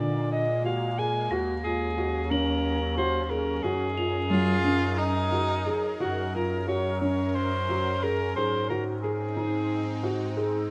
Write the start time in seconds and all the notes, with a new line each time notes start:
Already playing: A#2 G#3 A#3
0.00 D3 D5
0.32 D#5
0.65 F#4 F5
0.98 G#4 G#5
1.30 D#2 D#3 F#3 C#4 F#4 A#6
1.64 F4 G#4
1.98 F#4
2.31 C#4 A#4 F#7
2.97 F#4 C5
3.24 C5
3.30 G#4 A#4
3.63 F#2 F#3 D#4 F#4 G#4 A#4
3.97 F4 F7
4.30 F#3 F4
4.64 C#4
4.98 D#4
5.32 F#4
5.66 G#4
5.99 F#2 F#3 C#4 F#4 A#4
6.34 F4 A#4
6.67 F#4 C#5
7.01 C#4 C#5
7.35 C5
7.69 F#4
8.03 G#4 A#4
8.36 G#2 G#3 C4 D#4 G#4 C5
8.70 F#4 A#4
9.03 G#4
9.37 D#4
10.03 F#4
10.37 G#4